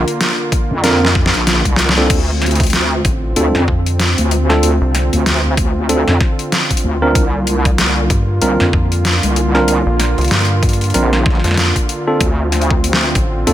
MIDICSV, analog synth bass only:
0, 0, Header, 1, 2, 480
1, 0, Start_track
1, 0, Key_signature, -1, "minor"
1, 0, Tempo, 631579
1, 1597, Time_signature, 4, 2, 24, 8
1, 10285, End_track
2, 0, Start_track
2, 0, Title_t, "Analog synth bass"
2, 0, Program_c, 0, 38
2, 2316, Note_on_c, 0, 33, 98
2, 2541, Note_off_c, 0, 33, 0
2, 2797, Note_on_c, 0, 41, 94
2, 3154, Note_off_c, 0, 41, 0
2, 3657, Note_on_c, 0, 36, 97
2, 3875, Note_off_c, 0, 36, 0
2, 6157, Note_on_c, 0, 43, 95
2, 6381, Note_off_c, 0, 43, 0
2, 6636, Note_on_c, 0, 41, 97
2, 6994, Note_off_c, 0, 41, 0
2, 7495, Note_on_c, 0, 34, 98
2, 7714, Note_off_c, 0, 34, 0
2, 7736, Note_on_c, 0, 36, 96
2, 7821, Note_off_c, 0, 36, 0
2, 7837, Note_on_c, 0, 43, 98
2, 8301, Note_off_c, 0, 43, 0
2, 8695, Note_on_c, 0, 41, 98
2, 8914, Note_off_c, 0, 41, 0
2, 9996, Note_on_c, 0, 33, 100
2, 10220, Note_off_c, 0, 33, 0
2, 10285, End_track
0, 0, End_of_file